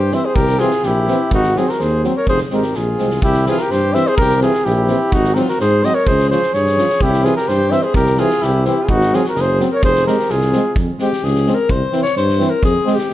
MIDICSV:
0, 0, Header, 1, 7, 480
1, 0, Start_track
1, 0, Tempo, 476948
1, 371, Time_signature, 2, 2, 24, 8
1, 4689, Tempo, 469484
1, 13354, End_track
2, 0, Start_track
2, 0, Title_t, "Flugelhorn"
2, 0, Program_c, 0, 56
2, 0, Note_on_c, 0, 72, 78
2, 141, Note_on_c, 0, 76, 72
2, 156, Note_off_c, 0, 72, 0
2, 256, Note_on_c, 0, 72, 81
2, 271, Note_off_c, 0, 76, 0
2, 353, Note_on_c, 0, 70, 85
2, 368, Note_off_c, 0, 72, 0
2, 592, Note_on_c, 0, 68, 85
2, 607, Note_off_c, 0, 70, 0
2, 854, Note_on_c, 0, 67, 84
2, 869, Note_off_c, 0, 68, 0
2, 1337, Note_off_c, 0, 67, 0
2, 1341, Note_on_c, 0, 66, 90
2, 1585, Note_on_c, 0, 68, 78
2, 1600, Note_off_c, 0, 66, 0
2, 1677, Note_on_c, 0, 72, 62
2, 1692, Note_off_c, 0, 68, 0
2, 1710, Note_on_c, 0, 70, 77
2, 1725, Note_off_c, 0, 72, 0
2, 1808, Note_on_c, 0, 72, 79
2, 1823, Note_off_c, 0, 70, 0
2, 2054, Note_off_c, 0, 72, 0
2, 2178, Note_on_c, 0, 73, 73
2, 2290, Note_off_c, 0, 73, 0
2, 2303, Note_on_c, 0, 72, 95
2, 2410, Note_off_c, 0, 72, 0
2, 2559, Note_on_c, 0, 70, 65
2, 2780, Note_on_c, 0, 68, 67
2, 2795, Note_off_c, 0, 70, 0
2, 3243, Note_off_c, 0, 68, 0
2, 3249, Note_on_c, 0, 67, 93
2, 3475, Note_off_c, 0, 67, 0
2, 3501, Note_on_c, 0, 68, 75
2, 3611, Note_on_c, 0, 70, 82
2, 3627, Note_off_c, 0, 68, 0
2, 3734, Note_on_c, 0, 72, 84
2, 3749, Note_off_c, 0, 70, 0
2, 3958, Note_on_c, 0, 76, 91
2, 3973, Note_off_c, 0, 72, 0
2, 4097, Note_on_c, 0, 72, 94
2, 4112, Note_off_c, 0, 76, 0
2, 4192, Note_off_c, 0, 72, 0
2, 4198, Note_on_c, 0, 70, 99
2, 4426, Note_off_c, 0, 70, 0
2, 4452, Note_on_c, 0, 68, 88
2, 4678, Note_on_c, 0, 67, 81
2, 4693, Note_off_c, 0, 68, 0
2, 5167, Note_on_c, 0, 66, 96
2, 5183, Note_off_c, 0, 67, 0
2, 5386, Note_on_c, 0, 70, 62
2, 5401, Note_off_c, 0, 66, 0
2, 5407, Note_off_c, 0, 70, 0
2, 5534, Note_on_c, 0, 70, 79
2, 5650, Note_off_c, 0, 70, 0
2, 5657, Note_on_c, 0, 72, 86
2, 5906, Note_on_c, 0, 75, 84
2, 5921, Note_off_c, 0, 72, 0
2, 6002, Note_on_c, 0, 73, 93
2, 6017, Note_off_c, 0, 75, 0
2, 6129, Note_on_c, 0, 72, 111
2, 6145, Note_off_c, 0, 73, 0
2, 6359, Note_off_c, 0, 72, 0
2, 6365, Note_on_c, 0, 72, 85
2, 6610, Note_on_c, 0, 73, 87
2, 6625, Note_off_c, 0, 72, 0
2, 7103, Note_on_c, 0, 67, 86
2, 7118, Note_off_c, 0, 73, 0
2, 7335, Note_on_c, 0, 68, 80
2, 7351, Note_off_c, 0, 67, 0
2, 7444, Note_off_c, 0, 68, 0
2, 7450, Note_on_c, 0, 70, 87
2, 7576, Note_on_c, 0, 72, 89
2, 7591, Note_off_c, 0, 70, 0
2, 7811, Note_on_c, 0, 76, 87
2, 7826, Note_off_c, 0, 72, 0
2, 7927, Note_on_c, 0, 72, 76
2, 7942, Note_off_c, 0, 76, 0
2, 8051, Note_off_c, 0, 72, 0
2, 8056, Note_on_c, 0, 70, 90
2, 8304, Note_on_c, 0, 68, 88
2, 8319, Note_off_c, 0, 70, 0
2, 8558, Note_on_c, 0, 67, 77
2, 8573, Note_off_c, 0, 68, 0
2, 8787, Note_off_c, 0, 67, 0
2, 8800, Note_on_c, 0, 67, 76
2, 8972, Note_on_c, 0, 68, 72
2, 8987, Note_off_c, 0, 67, 0
2, 9025, Note_on_c, 0, 66, 96
2, 9040, Note_off_c, 0, 68, 0
2, 9282, Note_on_c, 0, 68, 71
2, 9297, Note_off_c, 0, 66, 0
2, 9389, Note_off_c, 0, 68, 0
2, 9418, Note_on_c, 0, 70, 84
2, 9545, Note_on_c, 0, 72, 96
2, 9560, Note_off_c, 0, 70, 0
2, 9760, Note_off_c, 0, 72, 0
2, 9882, Note_on_c, 0, 73, 84
2, 9980, Note_off_c, 0, 73, 0
2, 9985, Note_on_c, 0, 72, 103
2, 10203, Note_off_c, 0, 72, 0
2, 10218, Note_on_c, 0, 70, 80
2, 10463, Note_on_c, 0, 68, 79
2, 10478, Note_off_c, 0, 70, 0
2, 10938, Note_off_c, 0, 68, 0
2, 13354, End_track
3, 0, Start_track
3, 0, Title_t, "Alto saxophone"
3, 0, Program_c, 1, 65
3, 0, Note_on_c, 1, 67, 82
3, 141, Note_on_c, 1, 72, 77
3, 156, Note_off_c, 1, 67, 0
3, 250, Note_on_c, 1, 68, 73
3, 265, Note_off_c, 1, 72, 0
3, 355, Note_on_c, 1, 67, 88
3, 370, Note_off_c, 1, 68, 0
3, 608, Note_on_c, 1, 65, 76
3, 623, Note_off_c, 1, 67, 0
3, 881, Note_on_c, 1, 64, 69
3, 896, Note_off_c, 1, 65, 0
3, 1335, Note_off_c, 1, 64, 0
3, 1341, Note_on_c, 1, 63, 75
3, 1558, Note_on_c, 1, 65, 68
3, 1573, Note_off_c, 1, 63, 0
3, 1653, Note_on_c, 1, 68, 47
3, 1668, Note_off_c, 1, 65, 0
3, 1701, Note_on_c, 1, 66, 65
3, 1716, Note_off_c, 1, 68, 0
3, 1808, Note_on_c, 1, 68, 77
3, 1823, Note_off_c, 1, 66, 0
3, 2054, Note_off_c, 1, 68, 0
3, 2183, Note_on_c, 1, 70, 68
3, 2292, Note_off_c, 1, 70, 0
3, 2305, Note_on_c, 1, 68, 84
3, 2412, Note_off_c, 1, 68, 0
3, 2544, Note_on_c, 1, 67, 57
3, 2780, Note_on_c, 1, 65, 60
3, 2795, Note_off_c, 1, 67, 0
3, 3255, Note_off_c, 1, 65, 0
3, 3261, Note_on_c, 1, 64, 81
3, 3481, Note_off_c, 1, 64, 0
3, 3527, Note_on_c, 1, 65, 79
3, 3644, Note_on_c, 1, 67, 73
3, 3659, Note_off_c, 1, 65, 0
3, 3742, Note_off_c, 1, 67, 0
3, 3742, Note_on_c, 1, 67, 78
3, 3978, Note_on_c, 1, 72, 87
3, 3993, Note_off_c, 1, 67, 0
3, 4111, Note_on_c, 1, 68, 86
3, 4127, Note_off_c, 1, 72, 0
3, 4221, Note_off_c, 1, 68, 0
3, 4235, Note_on_c, 1, 67, 99
3, 4443, Note_off_c, 1, 67, 0
3, 4449, Note_on_c, 1, 65, 72
3, 4698, Note_on_c, 1, 64, 75
3, 4714, Note_off_c, 1, 65, 0
3, 5179, Note_on_c, 1, 63, 76
3, 5194, Note_off_c, 1, 64, 0
3, 5393, Note_on_c, 1, 66, 56
3, 5408, Note_off_c, 1, 63, 0
3, 5439, Note_on_c, 1, 65, 78
3, 5454, Note_off_c, 1, 66, 0
3, 5544, Note_on_c, 1, 66, 61
3, 5559, Note_off_c, 1, 65, 0
3, 5658, Note_off_c, 1, 66, 0
3, 5664, Note_on_c, 1, 68, 76
3, 5880, Note_on_c, 1, 72, 76
3, 5896, Note_off_c, 1, 68, 0
3, 6005, Note_on_c, 1, 70, 77
3, 6020, Note_off_c, 1, 72, 0
3, 6144, Note_on_c, 1, 68, 87
3, 6159, Note_off_c, 1, 70, 0
3, 6375, Note_off_c, 1, 68, 0
3, 6381, Note_on_c, 1, 68, 69
3, 6620, Note_off_c, 1, 68, 0
3, 6620, Note_on_c, 1, 68, 78
3, 7116, Note_on_c, 1, 64, 75
3, 7131, Note_off_c, 1, 68, 0
3, 7342, Note_on_c, 1, 65, 72
3, 7358, Note_off_c, 1, 64, 0
3, 7454, Note_off_c, 1, 65, 0
3, 7460, Note_on_c, 1, 67, 70
3, 7591, Note_off_c, 1, 67, 0
3, 7591, Note_on_c, 1, 67, 81
3, 7833, Note_on_c, 1, 72, 68
3, 7849, Note_off_c, 1, 67, 0
3, 7943, Note_on_c, 1, 68, 77
3, 7958, Note_off_c, 1, 72, 0
3, 8054, Note_off_c, 1, 68, 0
3, 8060, Note_on_c, 1, 67, 81
3, 8299, Note_on_c, 1, 65, 75
3, 8314, Note_off_c, 1, 67, 0
3, 8535, Note_on_c, 1, 64, 75
3, 8550, Note_off_c, 1, 65, 0
3, 8775, Note_off_c, 1, 64, 0
3, 8781, Note_on_c, 1, 64, 63
3, 8942, Note_on_c, 1, 65, 64
3, 8957, Note_off_c, 1, 64, 0
3, 9019, Note_on_c, 1, 63, 78
3, 9034, Note_off_c, 1, 65, 0
3, 9270, Note_on_c, 1, 65, 71
3, 9286, Note_off_c, 1, 63, 0
3, 9383, Note_off_c, 1, 65, 0
3, 9391, Note_on_c, 1, 66, 64
3, 9505, Note_on_c, 1, 68, 76
3, 9520, Note_off_c, 1, 66, 0
3, 9739, Note_off_c, 1, 68, 0
3, 9858, Note_on_c, 1, 70, 67
3, 9967, Note_off_c, 1, 70, 0
3, 9983, Note_on_c, 1, 68, 75
3, 10202, Note_off_c, 1, 68, 0
3, 10231, Note_on_c, 1, 67, 63
3, 10471, Note_on_c, 1, 65, 71
3, 10486, Note_off_c, 1, 67, 0
3, 10942, Note_off_c, 1, 65, 0
3, 11177, Note_on_c, 1, 67, 80
3, 11424, Note_on_c, 1, 68, 81
3, 11439, Note_off_c, 1, 67, 0
3, 11727, Note_on_c, 1, 70, 86
3, 11742, Note_off_c, 1, 68, 0
3, 11896, Note_on_c, 1, 72, 90
3, 11911, Note_off_c, 1, 70, 0
3, 12213, Note_off_c, 1, 72, 0
3, 12223, Note_on_c, 1, 73, 99
3, 12366, Note_off_c, 1, 73, 0
3, 12373, Note_on_c, 1, 72, 92
3, 12703, Note_on_c, 1, 70, 80
3, 12718, Note_off_c, 1, 72, 0
3, 12848, Note_off_c, 1, 70, 0
3, 12854, Note_on_c, 1, 68, 92
3, 13170, Note_on_c, 1, 67, 79
3, 13185, Note_off_c, 1, 68, 0
3, 13354, Note_off_c, 1, 67, 0
3, 13354, End_track
4, 0, Start_track
4, 0, Title_t, "Trombone"
4, 0, Program_c, 2, 57
4, 128, Note_on_c, 2, 60, 60
4, 225, Note_off_c, 2, 60, 0
4, 606, Note_on_c, 2, 60, 72
4, 704, Note_off_c, 2, 60, 0
4, 1099, Note_on_c, 2, 60, 65
4, 1195, Note_off_c, 2, 60, 0
4, 1581, Note_on_c, 2, 60, 65
4, 1677, Note_off_c, 2, 60, 0
4, 2063, Note_on_c, 2, 60, 65
4, 2159, Note_off_c, 2, 60, 0
4, 2531, Note_on_c, 2, 60, 58
4, 2628, Note_off_c, 2, 60, 0
4, 3007, Note_on_c, 2, 60, 51
4, 3105, Note_off_c, 2, 60, 0
4, 3490, Note_on_c, 2, 60, 56
4, 3587, Note_off_c, 2, 60, 0
4, 3963, Note_on_c, 2, 60, 67
4, 4060, Note_off_c, 2, 60, 0
4, 4431, Note_on_c, 2, 60, 69
4, 4530, Note_off_c, 2, 60, 0
4, 4911, Note_on_c, 2, 60, 56
4, 5011, Note_off_c, 2, 60, 0
4, 5404, Note_on_c, 2, 60, 71
4, 5502, Note_off_c, 2, 60, 0
4, 5891, Note_on_c, 2, 60, 58
4, 5988, Note_off_c, 2, 60, 0
4, 6371, Note_on_c, 2, 61, 62
4, 6468, Note_off_c, 2, 61, 0
4, 6852, Note_on_c, 2, 61, 55
4, 6949, Note_off_c, 2, 61, 0
4, 7316, Note_on_c, 2, 60, 53
4, 7416, Note_off_c, 2, 60, 0
4, 7797, Note_on_c, 2, 60, 56
4, 7897, Note_off_c, 2, 60, 0
4, 8289, Note_on_c, 2, 60, 59
4, 8386, Note_off_c, 2, 60, 0
4, 8770, Note_on_c, 2, 60, 61
4, 8867, Note_off_c, 2, 60, 0
4, 9249, Note_on_c, 2, 60, 58
4, 9346, Note_off_c, 2, 60, 0
4, 9740, Note_on_c, 2, 60, 64
4, 9835, Note_off_c, 2, 60, 0
4, 10203, Note_on_c, 2, 60, 54
4, 10301, Note_off_c, 2, 60, 0
4, 10684, Note_on_c, 2, 60, 58
4, 10782, Note_off_c, 2, 60, 0
4, 11174, Note_on_c, 2, 60, 58
4, 11269, Note_off_c, 2, 60, 0
4, 11650, Note_on_c, 2, 60, 61
4, 11746, Note_off_c, 2, 60, 0
4, 12117, Note_on_c, 2, 60, 64
4, 12216, Note_off_c, 2, 60, 0
4, 12599, Note_on_c, 2, 60, 61
4, 12697, Note_off_c, 2, 60, 0
4, 13061, Note_on_c, 2, 60, 67
4, 13162, Note_off_c, 2, 60, 0
4, 13354, End_track
5, 0, Start_track
5, 0, Title_t, "Euphonium"
5, 0, Program_c, 3, 58
5, 117, Note_on_c, 3, 52, 62
5, 216, Note_off_c, 3, 52, 0
5, 609, Note_on_c, 3, 52, 62
5, 706, Note_off_c, 3, 52, 0
5, 1090, Note_on_c, 3, 52, 69
5, 1188, Note_off_c, 3, 52, 0
5, 1572, Note_on_c, 3, 54, 73
5, 1669, Note_off_c, 3, 54, 0
5, 2049, Note_on_c, 3, 54, 61
5, 2147, Note_off_c, 3, 54, 0
5, 2532, Note_on_c, 3, 56, 68
5, 2629, Note_off_c, 3, 56, 0
5, 3014, Note_on_c, 3, 56, 54
5, 3110, Note_off_c, 3, 56, 0
5, 3499, Note_on_c, 3, 52, 63
5, 3594, Note_off_c, 3, 52, 0
5, 3971, Note_on_c, 3, 52, 69
5, 4067, Note_off_c, 3, 52, 0
5, 4453, Note_on_c, 3, 52, 76
5, 4548, Note_off_c, 3, 52, 0
5, 4921, Note_on_c, 3, 52, 62
5, 5019, Note_off_c, 3, 52, 0
5, 5422, Note_on_c, 3, 54, 68
5, 5516, Note_off_c, 3, 54, 0
5, 5901, Note_on_c, 3, 54, 67
5, 5996, Note_off_c, 3, 54, 0
5, 6378, Note_on_c, 3, 53, 60
5, 6474, Note_off_c, 3, 53, 0
5, 6853, Note_on_c, 3, 53, 61
5, 6950, Note_off_c, 3, 53, 0
5, 7322, Note_on_c, 3, 52, 67
5, 7421, Note_off_c, 3, 52, 0
5, 7806, Note_on_c, 3, 52, 65
5, 7904, Note_off_c, 3, 52, 0
5, 8300, Note_on_c, 3, 52, 72
5, 8395, Note_off_c, 3, 52, 0
5, 8780, Note_on_c, 3, 52, 61
5, 8875, Note_off_c, 3, 52, 0
5, 9260, Note_on_c, 3, 54, 76
5, 9355, Note_off_c, 3, 54, 0
5, 9736, Note_on_c, 3, 54, 65
5, 9831, Note_off_c, 3, 54, 0
5, 10215, Note_on_c, 3, 56, 64
5, 10311, Note_off_c, 3, 56, 0
5, 10704, Note_on_c, 3, 56, 56
5, 10798, Note_off_c, 3, 56, 0
5, 11173, Note_on_c, 3, 56, 61
5, 11269, Note_off_c, 3, 56, 0
5, 11638, Note_on_c, 3, 56, 59
5, 11737, Note_off_c, 3, 56, 0
5, 12113, Note_on_c, 3, 52, 67
5, 12213, Note_off_c, 3, 52, 0
5, 12597, Note_on_c, 3, 52, 77
5, 12695, Note_off_c, 3, 52, 0
5, 13066, Note_on_c, 3, 56, 79
5, 13167, Note_off_c, 3, 56, 0
5, 13354, End_track
6, 0, Start_track
6, 0, Title_t, "Tuba"
6, 0, Program_c, 4, 58
6, 0, Note_on_c, 4, 43, 95
6, 150, Note_off_c, 4, 43, 0
6, 369, Note_on_c, 4, 36, 101
6, 635, Note_off_c, 4, 36, 0
6, 843, Note_on_c, 4, 34, 93
6, 1112, Note_off_c, 4, 34, 0
6, 1325, Note_on_c, 4, 32, 99
6, 1593, Note_off_c, 4, 32, 0
6, 1816, Note_on_c, 4, 39, 92
6, 2081, Note_off_c, 4, 39, 0
6, 2300, Note_on_c, 4, 29, 107
6, 2431, Note_off_c, 4, 29, 0
6, 2537, Note_on_c, 4, 32, 75
6, 2754, Note_off_c, 4, 32, 0
6, 2782, Note_on_c, 4, 34, 81
6, 2996, Note_off_c, 4, 34, 0
6, 3024, Note_on_c, 4, 36, 77
6, 3237, Note_off_c, 4, 36, 0
6, 3250, Note_on_c, 4, 36, 102
6, 3515, Note_off_c, 4, 36, 0
6, 3733, Note_on_c, 4, 43, 91
6, 3996, Note_off_c, 4, 43, 0
6, 4218, Note_on_c, 4, 36, 98
6, 4478, Note_off_c, 4, 36, 0
6, 4689, Note_on_c, 4, 34, 101
6, 4954, Note_off_c, 4, 34, 0
6, 5172, Note_on_c, 4, 32, 101
6, 5437, Note_off_c, 4, 32, 0
6, 5653, Note_on_c, 4, 44, 100
6, 5918, Note_off_c, 4, 44, 0
6, 6141, Note_on_c, 4, 37, 99
6, 6404, Note_off_c, 4, 37, 0
6, 6618, Note_on_c, 4, 43, 91
6, 6881, Note_off_c, 4, 43, 0
6, 7099, Note_on_c, 4, 36, 102
6, 7362, Note_off_c, 4, 36, 0
6, 7582, Note_on_c, 4, 43, 97
6, 7845, Note_off_c, 4, 43, 0
6, 8061, Note_on_c, 4, 36, 104
6, 8324, Note_off_c, 4, 36, 0
6, 8549, Note_on_c, 4, 36, 101
6, 8809, Note_off_c, 4, 36, 0
6, 9023, Note_on_c, 4, 32, 98
6, 9285, Note_off_c, 4, 32, 0
6, 9492, Note_on_c, 4, 30, 102
6, 9757, Note_off_c, 4, 30, 0
6, 9971, Note_on_c, 4, 29, 90
6, 10236, Note_off_c, 4, 29, 0
6, 10455, Note_on_c, 4, 36, 95
6, 10719, Note_off_c, 4, 36, 0
6, 10928, Note_on_c, 4, 41, 83
6, 11061, Note_off_c, 4, 41, 0
6, 11410, Note_on_c, 4, 37, 101
6, 11674, Note_off_c, 4, 37, 0
6, 11882, Note_on_c, 4, 36, 99
6, 12016, Note_off_c, 4, 36, 0
6, 12374, Note_on_c, 4, 43, 105
6, 12637, Note_off_c, 4, 43, 0
6, 12849, Note_on_c, 4, 41, 90
6, 12981, Note_off_c, 4, 41, 0
6, 13354, End_track
7, 0, Start_track
7, 0, Title_t, "Drums"
7, 117, Note_on_c, 9, 38, 26
7, 217, Note_off_c, 9, 38, 0
7, 358, Note_on_c, 9, 36, 104
7, 459, Note_off_c, 9, 36, 0
7, 474, Note_on_c, 9, 38, 25
7, 575, Note_off_c, 9, 38, 0
7, 595, Note_on_c, 9, 38, 34
7, 696, Note_off_c, 9, 38, 0
7, 710, Note_on_c, 9, 38, 26
7, 811, Note_off_c, 9, 38, 0
7, 834, Note_on_c, 9, 38, 29
7, 935, Note_off_c, 9, 38, 0
7, 1083, Note_on_c, 9, 38, 28
7, 1183, Note_off_c, 9, 38, 0
7, 1322, Note_on_c, 9, 36, 84
7, 1422, Note_off_c, 9, 36, 0
7, 1439, Note_on_c, 9, 38, 22
7, 1539, Note_off_c, 9, 38, 0
7, 1572, Note_on_c, 9, 38, 28
7, 1673, Note_off_c, 9, 38, 0
7, 1696, Note_on_c, 9, 38, 26
7, 1797, Note_off_c, 9, 38, 0
7, 1810, Note_on_c, 9, 38, 23
7, 1910, Note_off_c, 9, 38, 0
7, 2051, Note_on_c, 9, 38, 23
7, 2151, Note_off_c, 9, 38, 0
7, 2283, Note_on_c, 9, 36, 75
7, 2384, Note_off_c, 9, 36, 0
7, 2395, Note_on_c, 9, 38, 23
7, 2496, Note_off_c, 9, 38, 0
7, 2518, Note_on_c, 9, 38, 23
7, 2619, Note_off_c, 9, 38, 0
7, 2639, Note_on_c, 9, 38, 23
7, 2740, Note_off_c, 9, 38, 0
7, 2755, Note_on_c, 9, 38, 27
7, 2856, Note_off_c, 9, 38, 0
7, 3000, Note_on_c, 9, 38, 24
7, 3101, Note_off_c, 9, 38, 0
7, 3123, Note_on_c, 9, 38, 26
7, 3224, Note_off_c, 9, 38, 0
7, 3243, Note_on_c, 9, 36, 96
7, 3343, Note_off_c, 9, 36, 0
7, 3356, Note_on_c, 9, 38, 25
7, 3456, Note_off_c, 9, 38, 0
7, 3483, Note_on_c, 9, 38, 33
7, 3583, Note_off_c, 9, 38, 0
7, 3598, Note_on_c, 9, 38, 26
7, 3699, Note_off_c, 9, 38, 0
7, 3727, Note_on_c, 9, 38, 30
7, 3828, Note_off_c, 9, 38, 0
7, 3965, Note_on_c, 9, 38, 31
7, 4066, Note_off_c, 9, 38, 0
7, 4205, Note_on_c, 9, 36, 103
7, 4305, Note_off_c, 9, 36, 0
7, 4322, Note_on_c, 9, 38, 25
7, 4423, Note_off_c, 9, 38, 0
7, 4438, Note_on_c, 9, 38, 34
7, 4538, Note_off_c, 9, 38, 0
7, 4564, Note_on_c, 9, 38, 29
7, 4664, Note_off_c, 9, 38, 0
7, 4681, Note_on_c, 9, 38, 25
7, 4783, Note_off_c, 9, 38, 0
7, 4908, Note_on_c, 9, 38, 26
7, 5011, Note_off_c, 9, 38, 0
7, 5163, Note_on_c, 9, 36, 101
7, 5265, Note_off_c, 9, 36, 0
7, 5285, Note_on_c, 9, 38, 27
7, 5387, Note_off_c, 9, 38, 0
7, 5398, Note_on_c, 9, 38, 36
7, 5500, Note_off_c, 9, 38, 0
7, 5528, Note_on_c, 9, 38, 27
7, 5630, Note_off_c, 9, 38, 0
7, 5648, Note_on_c, 9, 38, 30
7, 5750, Note_off_c, 9, 38, 0
7, 5884, Note_on_c, 9, 38, 28
7, 5986, Note_off_c, 9, 38, 0
7, 6127, Note_on_c, 9, 36, 92
7, 6229, Note_off_c, 9, 36, 0
7, 6253, Note_on_c, 9, 38, 23
7, 6355, Note_off_c, 9, 38, 0
7, 6377, Note_on_c, 9, 38, 29
7, 6480, Note_off_c, 9, 38, 0
7, 6494, Note_on_c, 9, 38, 27
7, 6596, Note_off_c, 9, 38, 0
7, 6609, Note_on_c, 9, 38, 26
7, 6712, Note_off_c, 9, 38, 0
7, 6740, Note_on_c, 9, 38, 26
7, 6842, Note_off_c, 9, 38, 0
7, 6855, Note_on_c, 9, 38, 25
7, 6957, Note_off_c, 9, 38, 0
7, 6972, Note_on_c, 9, 38, 30
7, 7075, Note_off_c, 9, 38, 0
7, 7088, Note_on_c, 9, 36, 89
7, 7190, Note_off_c, 9, 36, 0
7, 7217, Note_on_c, 9, 38, 26
7, 7319, Note_off_c, 9, 38, 0
7, 7333, Note_on_c, 9, 38, 28
7, 7436, Note_off_c, 9, 38, 0
7, 7462, Note_on_c, 9, 38, 25
7, 7564, Note_off_c, 9, 38, 0
7, 7574, Note_on_c, 9, 38, 28
7, 7676, Note_off_c, 9, 38, 0
7, 7807, Note_on_c, 9, 38, 28
7, 7909, Note_off_c, 9, 38, 0
7, 8047, Note_on_c, 9, 36, 104
7, 8149, Note_off_c, 9, 36, 0
7, 8164, Note_on_c, 9, 38, 23
7, 8266, Note_off_c, 9, 38, 0
7, 8278, Note_on_c, 9, 38, 28
7, 8380, Note_off_c, 9, 38, 0
7, 8407, Note_on_c, 9, 38, 28
7, 8510, Note_off_c, 9, 38, 0
7, 8527, Note_on_c, 9, 38, 27
7, 8629, Note_off_c, 9, 38, 0
7, 8766, Note_on_c, 9, 38, 25
7, 8868, Note_off_c, 9, 38, 0
7, 9010, Note_on_c, 9, 36, 82
7, 9112, Note_off_c, 9, 36, 0
7, 9137, Note_on_c, 9, 38, 24
7, 9239, Note_off_c, 9, 38, 0
7, 9261, Note_on_c, 9, 38, 27
7, 9363, Note_off_c, 9, 38, 0
7, 9378, Note_on_c, 9, 38, 25
7, 9480, Note_off_c, 9, 38, 0
7, 9496, Note_on_c, 9, 38, 26
7, 9598, Note_off_c, 9, 38, 0
7, 9736, Note_on_c, 9, 38, 29
7, 9839, Note_off_c, 9, 38, 0
7, 9974, Note_on_c, 9, 36, 95
7, 10076, Note_off_c, 9, 36, 0
7, 10099, Note_on_c, 9, 38, 28
7, 10201, Note_off_c, 9, 38, 0
7, 10222, Note_on_c, 9, 38, 31
7, 10324, Note_off_c, 9, 38, 0
7, 10347, Note_on_c, 9, 38, 28
7, 10449, Note_off_c, 9, 38, 0
7, 10449, Note_on_c, 9, 38, 28
7, 10551, Note_off_c, 9, 38, 0
7, 10561, Note_on_c, 9, 38, 27
7, 10664, Note_off_c, 9, 38, 0
7, 10684, Note_on_c, 9, 38, 28
7, 10787, Note_off_c, 9, 38, 0
7, 10925, Note_on_c, 9, 36, 111
7, 11028, Note_off_c, 9, 36, 0
7, 11159, Note_on_c, 9, 38, 31
7, 11261, Note_off_c, 9, 38, 0
7, 11300, Note_on_c, 9, 38, 27
7, 11402, Note_off_c, 9, 38, 0
7, 11426, Note_on_c, 9, 38, 30
7, 11529, Note_off_c, 9, 38, 0
7, 11530, Note_on_c, 9, 38, 26
7, 11632, Note_off_c, 9, 38, 0
7, 11648, Note_on_c, 9, 38, 25
7, 11751, Note_off_c, 9, 38, 0
7, 11882, Note_on_c, 9, 36, 97
7, 11984, Note_off_c, 9, 36, 0
7, 12115, Note_on_c, 9, 38, 31
7, 12217, Note_off_c, 9, 38, 0
7, 12237, Note_on_c, 9, 38, 27
7, 12339, Note_off_c, 9, 38, 0
7, 12358, Note_on_c, 9, 38, 29
7, 12461, Note_off_c, 9, 38, 0
7, 12491, Note_on_c, 9, 38, 27
7, 12594, Note_off_c, 9, 38, 0
7, 12597, Note_on_c, 9, 38, 30
7, 12699, Note_off_c, 9, 38, 0
7, 12835, Note_on_c, 9, 36, 101
7, 12938, Note_off_c, 9, 36, 0
7, 13083, Note_on_c, 9, 38, 30
7, 13186, Note_off_c, 9, 38, 0
7, 13197, Note_on_c, 9, 38, 28
7, 13299, Note_off_c, 9, 38, 0
7, 13320, Note_on_c, 9, 38, 25
7, 13354, Note_off_c, 9, 38, 0
7, 13354, End_track
0, 0, End_of_file